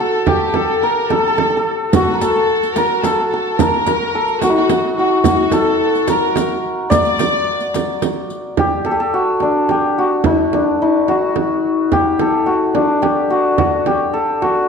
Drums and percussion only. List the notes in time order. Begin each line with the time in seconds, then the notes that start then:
0.27 frame drum
0.54 frame drum
1.10 frame drum
1.38 frame drum
1.93 riq, frame drum
2.21 riq
2.63 riq
2.76 riq, frame drum
3.04 riq, frame drum
3.59 riq, frame drum
3.86 riq, frame drum
4.28 riq
4.42 riq, frame drum
4.69 riq, frame drum
5.24 riq, frame drum
5.52 riq, frame drum
5.95 riq
6.08 riq, frame drum
6.36 riq, frame drum
6.91 riq, frame drum
7.05 riq
7.19 riq, frame drum
7.60 riq
7.74 riq, frame drum
8.02 riq, frame drum
8.30 riq
8.57 frame drum
8.85 frame drum
9.40 frame drum
9.69 frame drum
10.24 frame drum
10.53 frame drum
11.08 frame drum
11.36 frame drum
11.92 frame drum
12.19 frame drum
12.75 frame drum
13.03 frame drum
13.58 frame drum
13.86 frame drum
14.42 frame drum